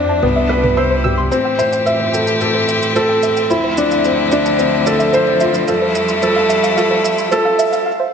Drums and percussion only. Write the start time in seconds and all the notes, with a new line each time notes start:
0.23 mid tom
0.64 mid tom
1.05 mid tom
1.32 shaker
1.59 mid tom, shaker
1.73 shaker
1.87 shaker
2.00 mid tom
2.14 shaker
2.27 shaker
2.41 mid tom, shaker
2.69 shaker
2.83 mid tom, shaker
2.96 shaker
3.23 mid tom, shaker
3.37 shaker
3.50 shaker
3.64 mid tom
3.78 shaker
3.91 shaker
4.05 mid tom, shaker
4.32 shaker
4.46 mid tom, shaker
4.59 shaker
4.87 mid tom, shaker
5.00 shaker
5.13 shaker
5.27 mid tom
5.41 shaker
5.54 shaker
5.68 mid tom, shaker
5.95 shaker
6.09 mid tom, shaker
6.22 shaker
6.50 mid tom, shaker
6.64 shaker
6.78 shaker
6.91 mid tom
7.05 shaker
7.18 shaker
7.32 mid tom, shaker
7.59 shaker
7.73 mid tom, shaker